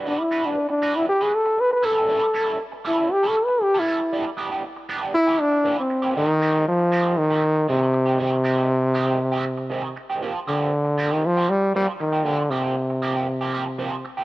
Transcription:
<<
  \new Staff \with { instrumentName = "Trombone" } { \time 4/4 \key g \lydian \tempo 4 = 118 d'16 e'8 d'8 d'8 e'16 g'16 gis'16 a'8 b'16 b'16 a'8~ | a'4 r8 e'8 \tuplet 3/2 { g'8 a'8 b'8 g'8 e'4~ } | e'16 r4. r16 e'8 d'8. c'8. | \key f \dorian ees4 f4 ees4 c4 |
c2.~ c8 r8 | r8 d4~ d16 ees16 f8 g8 g8 ees8 | d8 c2. r8 | }
  \new Staff \with { instrumentName = "Clean electric guitar" } { \time 4/4 \key g \lydian <g d' fis' b'>16 r16 <g d' fis' b'>16 <g d' fis' b'>16 r8 <g d' fis' b'>16 <g d' fis' b'>16 r16 <g d' fis' b'>16 r4 <g cis' e' a'>16 <g cis' e' a'>16 | <g cis' e' a'>16 r16 <g cis' e' a'>16 <g cis' e' a'>16 r8 <g cis' e' a'>16 <g cis' e' a'>16 r16 <g cis' e' a'>16 r8. <g cis' e' a'>16 <g cis' e' a'>16 r16 | <g b d' g'>16 r16 <g b d' g'>16 <g b d' g'>16 r8 <g b d' g'>16 <g b d' g'>16 r16 <e bes cis' g'>16 r8 <e bes cis' g'>16 r8 <e bes cis' g'>16 | \key f \dorian <ees aes c' g'>16 r16 <ees aes c' g'>16 <ees aes c' g'>16 r8 <ees aes c' g'>16 <ees aes c' g'>16 r16 <ees aes c' g'>16 r8 <ees aes c' g'>16 r8 <ees aes c' g'>16 |
<ees aes c' g'>16 r16 <ees aes c' g'>16 <ees aes c' g'>16 r8 <ees aes c' g'>16 <ees aes c' g'>16 r16 <ees aes c' g'>16 r8 <ees aes c' g'>16 r8 <ees aes c' g'>16 | <f bes c' g'>16 r16 <f bes c' g'>16 <f bes c' g'>16 r8 <f bes c' g'>16 <f bes c' g'>16 r16 <f bes c' g'>16 r8 <f bes c' g'>16 r8 <f bes c' g'>16 | <f bes c' g'>16 r16 <f bes c' g'>16 <f bes c' g'>16 r8 <f bes c' g'>16 <f bes c' g'>16 r16 <f bes c' g'>16 <f bes c' g'>16 r16 <f bes c' g'>16 r8 <f bes c' g'>16 | }
>>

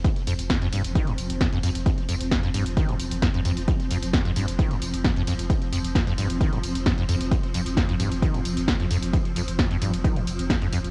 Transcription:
<<
  \new Staff \with { instrumentName = "Synth drone" } { \clef bass \time 4/4 \key c \phrygian \tempo 4 = 132 <f c'>1~ | <f c'>1~ | <f c'>1~ | <f c'>1~ |
<f c'>1~ | <f c'>1 | }
  \new Staff \with { instrumentName = "Acid bass" } { \clef bass \time 4/4 \key c \phrygian f,16 r16 f,16 r16 f,16 f,16 g,16 r16 ees16 g,16 r8 f,16 f,16 f,16 r16 | f,16 r16 f,16 r16 f,16 f,16 g,16 r16 ees16 g,16 r8 f,16 f,16 f,16 r16 | f,16 r16 f,16 r16 f,16 f,16 g,16 r16 ees16 g,16 r8 f,16 f,16 f,16 r16 | f,16 r16 f,16 r16 f,16 f,16 g,16 r16 ees16 g,16 r8 f,16 f,16 f,16 r16 |
f,16 r16 f,16 r16 f,16 f,16 g,16 r16 ees16 g,16 r8 f,16 f,16 f,16 r16 | f,16 r16 f,16 r16 f,16 f,16 g,16 r16 ees16 g,16 r8 f,16 f,16 f,16 r16 | }
  \new Staff \with { instrumentName = "Sub bass" } { \clef bass \time 4/4 \key c \phrygian r8 f,,16 f,,16 r8 f,,16 f,,16 r8 f,,16 f,,16 r8 f,,16 f,,16 | r8 f,,16 f,,16 r8 f,,16 f,,16 r8 f,,16 f,,16 r8 f,,16 f,,16 | r8 f,,16 f,,16 r8 f,,16 f,,16 r8 f,,16 f,,16 r8 f,,16 f,,16 | r8 f,,16 f,,16 r8 f,,16 f,,16 r8 f,,16 f,,16 r8 f,,16 f,,16 |
r8 f,,16 f,,16 r8 f,,16 f,,16 r8 f,,16 f,,16 r8 f,,16 f,,16 | r8 f,,16 f,,16 r8 f,,16 f,,16 r8 f,,16 f,,16 r8 f,,16 f,,16 | }
  \new DrumStaff \with { instrumentName = "Drums" } \drummode { \time 4/4 <hh bd cymr tamb>16 <cymr tamb>16 <hho cymr tamb>16 <hh cymr tamb>16 <hh bd cymr sn>16 <cymr tamb>16 <hho cymr tamb>16 <hh cymr tamb>16 <hh bd cymr>16 <cymr tamb>16 <hho cymr tamb>16 <hh cymr tamb>16 <hh bd cymr sn tamb>16 <cymr tamb>16 <hho cymr tamb>16 <hh cymr tamb>16 | <hh bd cymr tamb>16 <cymr tamb>16 <hho cymr tamb>16 <hh cymr tamb>16 <hh bd cymr sn tamb>16 <cymr tamb>16 <hho cymr tamb>16 <hh cymr tamb>16 <hh bd cymr tamb>16 <cymr tamb>16 <hho cymr tamb>16 <hh cymr tamb>16 <hh bd cymr sn tamb>16 <cymr tamb>16 <hho cymr tamb>16 <hh cymr tamb>16 | <hh bd cymr tamb>16 <cymr tamb>16 <hho cymr tamb>16 <hh cymr tamb>16 <hh bd cymr sn>16 <cymr tamb>16 <hho cymr tamb>16 <hh cymr tamb>16 <hh bd cymr tamb>16 <cymr tamb>16 <hho cymr tamb>16 <hh cymr tamb>16 <hh bd cymr sn tamb>16 <cymr tamb>16 <hho cymr tamb>16 <hh cymr tamb>16 | <hh bd cymr tamb>16 <cymr tamb>16 <hho cymr tamb>16 <hh cymr tamb>16 <hh bd cymr sn tamb>16 <cymr tamb>16 <hho cymr tamb>16 <hh cymr tamb>16 <hh bd cymr tamb>16 <cymr tamb>16 <hho cymr tamb>16 <hh cymr tamb>16 <hh bd cymr sn tamb>16 <cymr tamb>16 <hho cymr tamb>16 <hh cymr tamb>16 |
<hh bd cymr tamb>16 <cymr tamb>16 <hho cymr tamb>16 <hh cymr tamb>16 <hh bd cymr sn tamb>16 <cymr tamb>16 <hho cymr tamb>16 <hh cymr tamb>16 <hh bd cymr tamb>16 <cymr tamb>16 <hho cymr tamb>16 <hh cymr tamb>16 <hh bd cymr sn tamb>16 <cymr tamb>16 <hho cymr tamb>16 <hh cymr tamb>16 | <hh bd cymr tamb>16 <cymr tamb>16 <hho cymr tamb>16 <hh cymr tamb>16 <hh bd cymr sn tamb>16 <cymr tamb>16 <hho cymr tamb>16 <hh cymr tamb>16 <hh bd cymr tamb>16 <cymr tamb>16 <hho cymr tamb>16 <hh cymr tamb>16 <hh bd cymr sn tamb>16 <cymr tamb>16 <hho cymr tamb>16 <hh cymr tamb>16 | }
>>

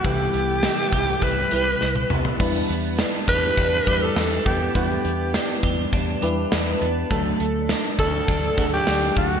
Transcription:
<<
  \new Staff \with { instrumentName = "Alto saxophone" } { \time 4/4 \key e \minor \tempo 4 = 102 g'2 b'4. r8 | r4. b'4~ b'16 a'8. g'8 | g'4. r2 r8 | r4. a'4~ a'16 g'8. fis'8 | }
  \new Staff \with { instrumentName = "Clean electric guitar" } { \time 4/4 \key e \minor <e b e' g'>8 b8 e'8 g'8 e'8 g'8 e'8 b8 | b8 b8 d'8 g'8 d'8 g'8 c'16 d'16 b8 | b8 b8 d'8 g'8 d'8 g'8 d'8 b8 | a8 a8 d'8 fis'8 d'8 fis'8 d'8 a8 | }
  \new Staff \with { instrumentName = "FM electric piano" } { \time 4/4 \key e \minor <c g e' b'>4. r4 <c g e' b'>4 r8 | <g d' e' b'>4. r4 <g d' e' b'>4 r8 | <g d' e' b'>4. r4 <g d' e' b'>4 r8 | <fis a d' a'>4. r4 <d a d' gis' a'>4 r8 | }
  \new Staff \with { instrumentName = "Fingered electric bass" } { \clef bass \time 4/4 \key e \minor c,8 c,8. r16 c,8 c,8 c,8 c,8 c,8 | e,8 e,8. r16 e,8 e,8 e,8 e,8 e,8 | e,8 e,8. r16 e,8 e,8 e,8 e,8 e,8 | d,8 d,8. r16 d,8 d,8 d,8 d,8 d,8 | }
  \new DrumStaff \with { instrumentName = "Drums" } \drummode { \time 4/4 <hh bd>8 hh8 <hh sn>8 <hh bd>8 <hh bd>8 hh8 sn16 tommh16 toml16 tomfh16 | <cymc bd>8 hh8 <hh sn>8 <hh bd>8 <hh bd>8 <hh bd>8 <hh sn>8 <hh bd>8 | <hh bd>8 hh8 <hh sn>8 <hh bd>8 <hh bd>8 hh8 <hh sn>8 hh8 | <hh bd>8 hh8 <hh sn>8 <hh bd>8 <hh bd>8 <hh bd>8 <hh sn>8 <hh bd>8 | }
>>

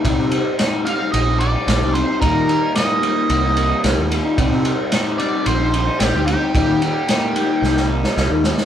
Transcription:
<<
  \new Staff \with { instrumentName = "Lead electric guitar" } { \time 4/4 \key c \minor \tempo 4 = 111 r4. f''8 ees''8 d''4 c''8 | bes'4 ees''2 r4 | r4. d''8 c''4 g'8 g'8~ | g'2~ g'8 r4. | }
  \new Staff \with { instrumentName = "Harmonium" } { \time 4/4 \key c \minor << { <c' g'>1 | <bes g'>1 | <c' g'>1 | <bes g'>1 | } \\ { ees'1~ | ees'1~ | ees'1~ | ees'1 | } >> }
  \new Staff \with { instrumentName = "Harmonium" } { \clef bass \time 4/4 \key c \minor g1 | g1~ | g1~ | g1 | }
  \new Staff \with { instrumentName = "Clean electric guitar" } { \time 4/4 \key c \minor <c g c' ees'>8 <c g c' ees'>8 <c g c' ees'>8 <c g c' ees'>16 <g c' ees'>8 <g c' ees'>16 <c g c' ees'>16 <g c' ees'>16 <c g c' ees'>16 <g c' ees'>16 <c g c' ees'>16 <g c' ees'>16 | <ees g bes ees'>8 <ees g bes ees'>8 <ees g bes ees'>8 <ees g bes ees'>16 <g bes ees'>8 <g bes ees'>16 <ees g bes ees'>16 <g bes ees'>16 <ees g bes ees'>16 <g bes ees'>16 <ees g bes ees'>16 <g bes ees'>16 | <c g c' ees'>8 <c g c' ees'>8 <c g c' ees'>8 <c g c' ees'>16 <g c' ees'>8 <g c' ees'>16 <c g c' ees'>16 <g c' ees'>16 <c g c' ees'>16 <g c' ees'>16 <c g c' ees'>16 <g c' ees'>16 | <ees g bes ees'>8 <ees g bes ees'>8 <ees g bes ees'>8 <ees g bes ees'>16 <g bes ees'>8 <g bes ees'>16 <ees g bes ees'>16 <g bes ees'>16 <ees g bes ees'>16 <g bes ees'>16 <ees g bes ees'>16 <g bes ees'>16 | }
  \new Staff \with { instrumentName = "Picked electric bass" } { \clef bass \time 4/4 \key c \minor c,16 c8 r4 r16 bes,,4 bes,,16 c,8 r16 | ees,16 ees8 r4 r16 c,4 c,16 ees,8 r16 | c,16 c8 r4 r16 bes,,4 bes,,16 d,8 r16 | ees,16 ees8 r4 r16 c,4 c,16 ees,8 r16 | }
  \new DrumStaff \with { instrumentName = "Drums" } \drummode { \time 4/4 <bd cymr>8 cymr8 <cymr sn>8 cymr8 cymr8 cymr8 <cymr sn>8 cymr8 | <bd cymr>8 cymr8 <cymr sn>8 cymr8 cymr8 cymr8 <cymr sn>8 cymr8 | <bd cymr>8 cymr8 <cymr sn>8 cymr8 cymr8 cymr8 <cymr sn>8 cymr8 | <bd cymr>8 cymr8 <cymr sn>8 cymr8 sn16 sn8 sn16 sn8 sn16 sn16 | }
>>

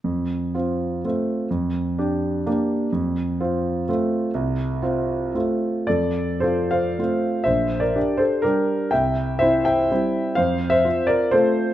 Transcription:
\new Staff \with { instrumentName = "Grand piano" } { \time 3/4 \key f \major \tempo 4 = 124 << { r2. | r2. | r2. | r2. |
<a' d''>4 <a' c''>8 <c'' f''>4. | <c'' e''>8. <bes' d''>8. <a' c''>8 <g' bes'>4 | <e'' g''>4 <c'' e''>8 <e'' g''>4. | <c'' f''>8. <c'' e''>8. <bes' d''>8 <a' c''>4 | } \\ { f,4 <c' f'>4 <a c' f'>4 | f,4 <d' g'>4 <bes d' g'>4 | f,4 <c' f'>4 <a c' f'>4 | c,4 <c' f'>4 <a c' f'>4 |
f,4 <c' f'>4 <a c' f'>4 | bes,,4 <d' g'>4 <g d'>4 | c,4 <c' e'>4 <g c' e'>4 | f,4 <c' f'>4 <a c' f'>4 | } >> }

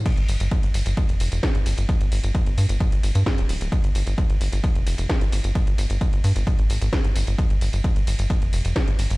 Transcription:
<<
  \new Staff \with { instrumentName = "Analog synth bass" } { \clef bass \time 4/4 \key f \dorian \tempo 4 = 131 r16 g,,16 g,,16 g,,16 r16 g,,16 g,,16 g,,16 r16 f,,16 f,,16 f,,16 r16 g,,16 g,,16 g,,16 | r16 g,,16 g,,16 g,,16 r16 g,,16 g,16 g,,16 r16 g,,16 g,,16 g,16 r16 d,,16 d,,16 d,,16 | r16 g,,16 g,,16 g,,16 r16 g,,16 g,,16 g,,16 r16 f,,16 f,,16 f,,16 r16 g,,16 g,,16 g,,16 | r16 g,,16 g,,16 g,,16 r16 g,,16 g,16 g,,16 r16 aes,,16 aes,,16 aes,,16 r16 g,,16 g,,16 g,,16 |
r16 g,,16 g,,16 g,,16 r16 g,,16 g,,16 g,,16 r16 f,,16 f,,16 f,,16 r16 g,,16 g,,16 g,,16 | }
  \new DrumStaff \with { instrumentName = "Drums" } \drummode { \time 4/4 <cymc hh bd cymr tamb>16 <hh cymr>16 <hho cymr tamb>16 <hh cymr tamb>16 <hh bd cymr tamb>16 <hh cymr>16 <hho cymr tamb>16 <hh cymr tamb>16 <hh bd cymr tamb>16 <hh cymr>16 <hho cymr tamb>16 <hh cymr tamb>16 <hh bd cymr sn tamb>16 <hh cymr>16 <hho cymr tamb>16 <hh cymr tamb>16 | <hh bd cymr tamb>16 <hh cymr>16 <hho cymr tamb>16 <hh cymr tamb>16 <hh bd cymr tamb>16 <hh cymr>16 <hho cymr tamb>16 <hh cymr tamb>16 <hh bd cymr tamb>16 <hh cymr>16 <hho cymr tamb>16 <hh cymr tamb>16 <hh bd cymr sn>16 <hh cymr>16 <hho cymr tamb>16 <hh cymr tamb>16 | <hh bd cymr tamb>16 <hh cymr>16 <hho cymr tamb>16 <hh cymr tamb>16 <hh bd cymr tamb>16 <hh cymr>16 <hho cymr tamb>16 <hh cymr tamb>16 <hh bd cymr tamb>16 <hh cymr>16 <hho cymr tamb>16 <hh cymr tamb>16 <hh bd cymr sn tamb>16 <hh cymr>16 <hho cymr tamb>16 <hh cymr tamb>16 | <hh bd cymr tamb>16 <hh cymr>16 <hho cymr tamb>16 <hh cymr tamb>16 <hh bd cymr tamb>16 <hh cymr>16 <hho cymr tamb>16 <hh cymr tamb>16 <hh bd cymr tamb>16 <hh cymr>16 <hho cymr tamb>16 <hh cymr tamb>16 <hh bd cymr sn tamb>16 <hh cymr>16 <hho cymr tamb>16 <hh cymr tamb>16 |
<hh bd cymr tamb>16 <hh cymr>16 <hho cymr tamb>16 <hh cymr tamb>16 <hh bd cymr tamb>16 <hh cymr>16 <hho cymr tamb>16 <hh cymr tamb>16 <hh bd cymr tamb>16 <hh cymr>16 <hho cymr tamb>16 <hh cymr tamb>16 <hh bd cymr sn tamb>16 <hh cymr>16 <hho cymr tamb>16 <hh cymr tamb>16 | }
>>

